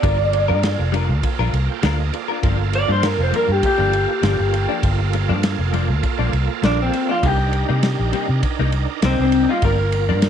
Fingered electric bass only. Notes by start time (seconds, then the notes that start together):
0.03 G1
0.49 G2
0.79 F1
1.09 D2
1.39 A#1
1.53 C2
1.83 D2
2.44 G1
2.88 G2
3.18 F1
3.48 G2
3.79 G1
4.23 G1
4.39 G1
4.83 G1
5.29 G2
5.59 F1
5.89 D2
6.19 A#1
6.33 C2
6.63 A#1
7.23 C2
7.69 C3
7.99 A#1
8.29 C3
8.59 C2
9.03 C2
9.19 C2
9.63 G1
10.09 G2